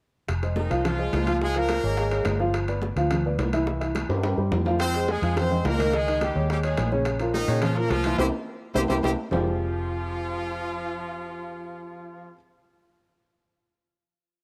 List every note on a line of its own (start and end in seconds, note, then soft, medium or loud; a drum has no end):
0.28 0.68 F1 medium
0.28 high bongo medium
0.28 high conga soft
0.28 high timbale medium
0.43 0.66 G#3 medium
0.43 0.66 G#4 medium
0.43 0.66 C5 medium
0.43 high bongo soft
0.43 high conga soft
0.43 high timbale medium
0.56 0.83 D#3 medium
0.56 0.83 D#4 medium
0.56 high bongo medium
0.56 high conga medium
0.70 1.11 C2 medium
0.70 0.94 F3 medium
0.70 0.94 F4 medium
0.70 0.94 F5 medium
0.70 high bongo soft
0.70 high conga soft
0.70 high timbale medium
0.85 1.38 F3 medium
0.85 1.38 F4 medium
0.85 high bongo medium
0.85 high conga soft
0.85 low conga medium
0.85 high timbale medium
0.98 1.22 G#3 medium
0.98 1.22 G#4 medium
0.98 1.22 C5 medium
0.98 high conga soft
1.13 1.79 C#2 medium
1.13 high bongo medium
1.13 low bongo medium
1.13 high conga medium
1.13 high timbale medium
1.13 low timbale medium
1.27 1.39 F3 medium
1.27 1.39 F4 medium
1.27 1.39 F5 medium
1.27 high bongo soft
1.27 high conga medium
1.27 high timbale medium
1.41 1.53 F3 medium
1.41 1.56 G#3 medium
1.41 1.54 F4 medium
1.41 1.56 G#4 medium
1.41 1.54 F5 medium
1.41 high bongo medium
1.41 high conga soft
1.55 1.79 F3 medium
1.55 2.41 A#3 medium
1.55 1.79 F4 medium
1.55 2.41 A#4 medium
1.55 1.79 F5 medium
1.55 high bongo soft
1.55 high conga soft
1.55 high timbale medium
1.69 high bongo medium
1.69 high conga medium
1.69 high timbale medium
1.83 2.23 G#1 medium
1.83 1.95 G#3 medium
1.83 1.95 G#4 medium
1.83 1.96 C#5 medium
1.83 high conga soft
1.97 2.09 G#3 medium
1.97 2.09 G#4 medium
1.97 2.09 C#5 medium
1.97 high bongo medium
1.97 high conga soft
1.97 high timbale medium
2.11 2.35 G#3 medium
2.11 2.35 G#4 medium
2.11 2.35 C#5 medium
2.11 high bongo soft
2.11 high conga soft
2.11 high timbale medium
2.25 2.91 G1 medium
2.25 high bongo medium
2.25 low bongo medium
2.25 high conga medium
2.25 high timbale medium
2.25 low timbale medium
2.40 2.63 F3 medium
2.40 2.63 F4 medium
2.40 2.63 F5 medium
2.40 high bongo soft
2.54 high bongo medium
2.54 high conga soft
2.54 high timbale medium
2.68 2.92 B3 medium
2.68 2.92 B4 medium
2.68 2.92 D5 medium
2.68 high bongo soft
2.68 high conga soft
2.68 high timbale medium
2.82 high bongo medium
2.82 high conga medium
2.96 3.36 D2 medium
2.96 3.20 F3 medium
2.96 3.20 F4 medium
2.96 3.21 F5 medium
2.96 high bongo soft
2.96 high conga soft
2.96 high timbale medium
3.11 high bongo medium
3.11 high conga soft
3.11 low conga medium
3.11 high timbale medium
3.25 3.49 B3 medium
3.25 3.49 B4 medium
3.25 3.49 D5 medium
3.25 high conga soft
3.38 4.04 C2 medium
3.38 high bongo medium
3.38 low bongo medium
3.38 high conga medium
3.38 high timbale medium
3.38 low timbale medium
3.53 3.65 E3 medium
3.53 3.65 E4 medium
3.53 3.65 E5 medium
3.53 high bongo soft
3.53 high conga medium
3.53 high timbale medium
3.67 3.79 E3 medium
3.67 3.79 E4 medium
3.67 3.79 E5 medium
3.67 high bongo medium
3.67 high conga soft
3.81 4.04 E3 medium
3.81 4.04 E4 medium
3.81 4.05 E5 medium
3.81 high bongo soft
3.81 high conga soft
3.81 high timbale medium
3.95 high bongo medium
3.95 high conga medium
3.95 high timbale loud
4.09 4.36 G2 medium
4.09 4.21 G3 medium
4.09 4.21 G4 medium
4.09 4.21 C5 medium
4.09 high conga soft
4.09 high timbale medium
4.23 4.35 G3 medium
4.23 4.35 G4 medium
4.23 4.35 C5 medium
4.23 high bongo medium
4.23 high conga soft
4.23 high timbale medium
4.38 4.51 G2 medium
4.38 4.61 G3 medium
4.38 4.61 G4 medium
4.38 4.61 C5 medium
4.38 high bongo soft
4.38 high conga soft
4.52 5.17 F2 medium
4.52 high bongo medium
4.52 low bongo medium
4.52 high conga medium
4.52 low timbale medium
4.65 4.89 F3 medium
4.65 4.89 F4 medium
4.65 4.89 F5 medium
4.65 high bongo soft
4.65 high conga medium
4.65 low timbale medium
4.80 5.06 C4 loud
4.80 5.06 C5 loud
4.80 high bongo medium
4.80 high timbale medium
4.94 5.17 G#3 medium
4.94 5.18 G#4 medium
4.94 5.18 C5 medium
4.94 high bongo soft
4.94 high conga soft
4.94 high timbale medium
5.08 5.37 G#3 medium
5.08 5.37 G#4 medium
5.08 high bongo medium
5.08 high conga medium
5.22 5.62 F2 medium
5.22 5.46 F3 medium
5.22 5.46 F4 medium
5.22 5.46 F5 medium
5.22 high bongo soft
5.22 high conga soft
5.22 high timbale medium
5.36 5.63 C4 medium
5.36 5.63 C5 medium
5.36 high bongo medium
5.36 high conga soft
5.36 low conga medium
5.36 high timbale medium
5.50 5.73 G#3 medium
5.50 5.73 G#4 medium
5.50 5.74 C5 medium
5.50 high conga soft
5.50 low conga medium
5.65 6.30 C#2 medium
5.65 5.94 A#3 medium
5.65 5.94 A#4 loud
5.65 high bongo medium
5.65 low bongo medium
5.65 high conga medium
5.65 high timbale medium
5.65 low timbale medium
5.79 5.91 D#3 medium
5.79 5.91 D#4 medium
5.79 5.91 D#5 medium
5.79 high bongo soft
5.79 high conga medium
5.79 high timbale medium
5.93 6.05 D#3 medium
5.93 6.22 G#3 medium
5.93 6.05 D#4 medium
5.93 6.22 G#4 medium
5.93 6.05 D#5 medium
5.93 high bongo medium
6.07 6.30 D#3 medium
6.07 6.30 D#4 medium
6.07 6.31 D#5 medium
6.07 high bongo soft
6.07 high conga soft
6.07 high timbale medium
6.21 6.49 G3 medium
6.21 6.49 G4 medium
6.21 high bongo medium
6.21 high conga medium
6.21 high timbale medium
6.35 6.75 D#2 medium
6.35 6.47 G#3 medium
6.35 6.47 G#4 medium
6.35 6.47 C#5 medium
6.35 high conga soft
6.49 6.57 G3 medium
6.49 6.61 G#3 medium
6.49 6.57 G4 medium
6.49 6.61 G#4 medium
6.49 6.62 C#5 medium
6.49 high bongo medium
6.49 high conga soft
6.49 high timbale medium
6.63 6.87 G#3 medium
6.63 6.90 G#3 medium
6.63 6.87 G#4 medium
6.63 6.90 G#4 medium
6.63 6.87 C#5 medium
6.63 high bongo soft
6.63 high conga soft
6.63 high timbale medium
6.77 7.43 A#1 medium
6.77 high bongo medium
6.77 low bongo medium
6.77 high conga medium
6.77 high timbale medium
6.77 low timbale medium
6.92 7.15 C#3 medium
6.92 7.15 C#4 medium
6.92 7.15 C#5 medium
6.92 high bongo soft
6.92 high conga medium
7.05 high bongo medium
7.05 high timbale medium
7.20 7.43 F3 medium
7.20 7.44 F4 medium
7.20 7.44 A#4 medium
7.20 high bongo soft
7.20 high conga soft
7.20 high timbale medium
7.34 7.60 D#3 medium
7.34 7.60 D#4 medium
7.34 high bongo medium
7.34 high conga medium
7.48 7.87 A#2 medium
7.48 7.71 C#3 medium
7.48 7.72 C#4 medium
7.48 7.72 C#5 medium
7.48 high bongo soft
7.48 high conga soft
7.48 high timbale medium
7.62 7.76 F3 medium
7.62 7.76 F4 medium
7.62 high bongo medium
7.62 high conga soft
7.62 low conga medium
7.62 high timbale medium
7.76 8.00 F3 medium
7.76 7.91 A#3 medium
7.76 8.00 F4 medium
7.76 7.91 A#4 medium
7.76 8.00 A#4 medium
7.76 high conga soft
7.90 8.17 C2 medium
7.90 8.18 F3 medium
7.90 8.18 F4 loud
7.90 high bongo medium
7.90 low bongo medium
7.90 high conga medium
7.90 high timbale medium
8.04 8.17 E3 medium
8.04 8.17 E4 medium
8.04 8.17 E5 medium
8.04 high bongo soft
8.04 high conga medium
8.04 high timbale medium
8.18 8.29 C2 loud
8.18 8.25 C4 medium
8.18 8.28 C4 loud
8.18 8.25 E4 medium
8.18 8.28 E4 medium
8.18 8.25 G4 medium
8.18 8.28 G4 medium
8.18 8.25 C5 medium
8.18 high bongo medium
8.18 high conga medium
8.18 high timbale medium
8.75 8.86 C2 medium
8.75 8.81 C4 medium
8.75 8.84 C4 loud
8.75 8.82 E4 medium
8.75 8.84 E4 medium
8.75 8.82 G4 medium
8.75 8.84 G4 loud
8.75 8.81 C5 medium
8.75 high bongo loud
8.75 high conga medium
8.75 high timbale medium
8.89 9.00 C2 medium
8.89 8.96 C4 medium
8.89 8.99 C4 medium
8.89 8.96 E4 medium
8.89 8.98 E4 medium
8.89 8.96 G4 medium
8.89 8.98 G4 medium
8.89 8.96 C5 medium
8.89 high bongo medium
8.89 high conga medium
8.89 high timbale loud
9.03 9.14 C2 medium
9.03 9.10 C4 medium
9.03 9.13 C4 medium
9.03 9.10 E4 medium
9.03 9.13 E4 medium
9.03 9.10 G4 medium
9.03 9.13 G4 medium
9.03 9.10 C5 loud
9.03 high bongo loud
9.03 high conga medium
9.03 high timbale medium
9.31 12.33 F1 medium
9.31 12.33 F3 medium
9.31 12.34 F3 medium
9.31 12.34 C4 medium
9.31 12.33 F4 medium
9.31 12.34 F4 medium
9.31 12.34 G4 medium
9.31 12.34 G#4 medium
9.31 12.34 C5 medium
9.31 low bongo medium
9.31 low conga medium
9.31 low timbale medium